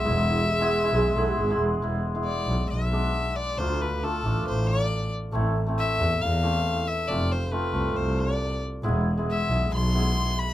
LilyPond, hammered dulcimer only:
\new Staff \with { instrumentName = "Hammered dulcimer" } { \time 4/4 \tempo 4 = 136 <gis b e'>8 r8. <gis b e'>16 r16 <gis b e'>16 r8 <gis b e'>8 r16 <gis b e'>16 r8 | <gis b e'>8 r16 <gis b e'>8. r4 <gis b d'>8. r8. | <a d' f'>8 r8 <a d' f'>16 r16 <a d' f'>4 r4. | <a c' e'>8 r16 <a c' e'>8. r4 <e a c'>8. r8. |
<a c' f'>8 r8 <a c' f'>16 r16 <a c' f'>4 r4. | <gis b e'>8 r16 <gis b e'>8. r4 <gis b e'>8. r8. | }